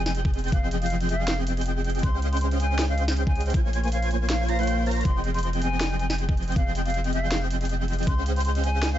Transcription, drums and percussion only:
0.06 snare medium
0.06 closed hi-hat medium
0.10 closed hi-hat medium
0.15 closed hi-hat medium
0.25 kick loud
0.34 closed hi-hat medium
0.39 closed hi-hat medium
0.44 closed hi-hat medium
0.48 closed hi-hat medium
0.52 kick loud
0.52 closed hi-hat medium
0.71 closed hi-hat medium
0.82 closed hi-hat medium
0.86 closed hi-hat medium
0.90 closed hi-hat medium
1.01 closed hi-hat medium
1.09 closed hi-hat medium
1.28 snare loud
1.28 closed hi-hat medium
1.47 closed hi-hat medium
1.57 closed hi-hat medium
1.61 closed hi-hat medium
1.66 closed hi-hat medium
1.84 closed hi-hat medium
1.90 closed hi-hat medium
1.95 closed hi-hat medium
1.99 closed hi-hat medium
2.03 kick loud
2.03 closed hi-hat medium
2.22 closed hi-hat medium
2.33 closed hi-hat medium
2.37 closed hi-hat medium
2.41 closed hi-hat medium
2.51 closed hi-hat medium
2.60 closed hi-hat medium
2.79 snare loud
2.79 closed hi-hat medium
2.98 closed hi-hat medium
3.08 snare medium
3.08 closed hi-hat medium
3.12 closed hi-hat medium
3.17 closed hi-hat medium
3.27 kick loud
3.35 closed hi-hat soft
3.41 closed hi-hat medium
3.46 closed hi-hat medium
3.50 closed hi-hat medium
3.54 kick loud
3.54 closed hi-hat medium
3.73 closed hi-hat medium
3.84 closed hi-hat medium
3.88 closed hi-hat medium
3.92 closed hi-hat medium
4.02 closed hi-hat medium
4.11 closed hi-hat medium
4.30 snare loud
4.30 closed hi-hat medium
4.49 closed hi-hat medium
4.59 closed hi-hat soft
4.63 closed hi-hat medium
4.67 closed hi-hat medium
4.86 closed hi-hat soft
4.91 closed hi-hat medium
4.97 closed hi-hat soft
5.01 closed hi-hat medium
5.05 kick loud
5.05 closed hi-hat medium
5.24 closed hi-hat medium
5.34 closed hi-hat soft
5.39 closed hi-hat medium
5.43 closed hi-hat medium
5.53 closed hi-hat medium
5.62 closed hi-hat medium
5.81 snare loud
5.81 closed hi-hat medium
5.99 closed hi-hat medium
6.10 snare medium
6.10 closed hi-hat soft
6.14 closed hi-hat medium
6.18 closed hi-hat medium
6.29 kick loud
6.37 closed hi-hat soft
6.43 closed hi-hat medium
6.48 closed hi-hat soft
6.52 closed hi-hat medium
6.56 kick loud
6.56 closed hi-hat medium
6.75 closed hi-hat medium
6.86 closed hi-hat soft
6.90 closed hi-hat medium
6.94 closed hi-hat medium
7.04 closed hi-hat medium
7.13 closed hi-hat medium
7.32 snare loud
7.32 closed hi-hat medium
7.51 closed hi-hat medium
7.61 closed hi-hat soft
7.65 closed hi-hat medium
7.69 closed hi-hat medium
7.88 closed hi-hat soft
7.93 closed hi-hat medium
7.99 closed hi-hat soft
8.03 closed hi-hat medium
8.07 kick loud
8.07 closed hi-hat medium
8.26 closed hi-hat medium
8.36 closed hi-hat medium
8.41 closed hi-hat medium
8.45 closed hi-hat medium
8.55 closed hi-hat medium
8.64 closed hi-hat medium
8.83 snare loud
8.83 closed hi-hat medium

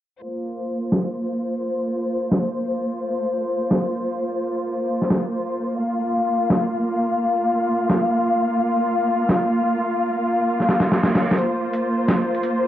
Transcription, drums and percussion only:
0.92 snare loud
2.32 snare loud
3.71 snare loud
5.02 snare soft
5.10 snare loud
6.50 snare loud
7.90 snare loud
9.29 snare loud
10.60 snare soft
10.69 snare medium
10.80 snare medium
10.92 snare medium
11.03 snare medium
11.15 snare medium
11.31 snare medium
11.39 closed hi-hat medium
11.73 closed hi-hat medium
12.08 snare loud
12.08 closed hi-hat medium
12.35 closed hi-hat soft
12.43 closed hi-hat medium

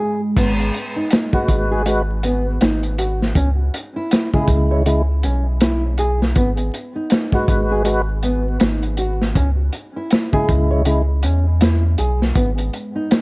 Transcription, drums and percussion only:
0.36 kick loud
0.36 closed hi-hat medium
0.36 crash medium
0.60 closed hi-hat soft
0.74 closed hi-hat medium
1.10 snare loud
1.10 closed hi-hat medium
1.33 kick medium
1.48 kick medium
1.48 closed hi-hat medium
1.86 closed hi-hat medium
2.23 closed hi-hat medium
2.61 snare loud
2.61 closed hi-hat medium
2.83 closed hi-hat soft
2.99 closed hi-hat medium
3.23 snare soft
3.36 kick loud
3.36 closed hi-hat medium
3.74 closed hi-hat medium
4.11 snare loud
4.11 closed hi-hat medium
4.33 kick medium
4.48 kick medium
4.48 closed hi-hat medium
4.86 closed hi-hat medium
5.23 closed hi-hat medium
5.61 snare loud
5.61 closed hi-hat medium
5.98 closed hi-hat medium
6.22 snare soft
6.35 kick loud
6.35 closed hi-hat medium
6.57 closed hi-hat soft
6.74 closed hi-hat medium
7.10 snare loud
7.10 closed hi-hat medium
7.33 kick medium
7.48 kick loud
7.48 closed hi-hat medium
7.85 closed hi-hat loud
8.23 closed hi-hat medium
8.60 snare loud
8.60 closed hi-hat medium
8.83 closed hi-hat soft
8.97 closed hi-hat medium
9.22 snare soft
9.35 kick loud
9.35 closed hi-hat medium
9.73 closed hi-hat medium
10.10 snare loud
10.10 closed hi-hat medium
10.33 kick medium
10.48 kick loud
10.48 closed hi-hat medium
10.85 closed hi-hat medium
11.23 closed hi-hat medium
11.61 snare loud
11.61 closed hi-hat medium
11.98 closed hi-hat medium
12.22 snare soft
12.35 kick loud
12.35 closed hi-hat medium
12.58 closed hi-hat soft
12.74 closed hi-hat medium
13.11 snare loud
13.11 closed hi-hat medium

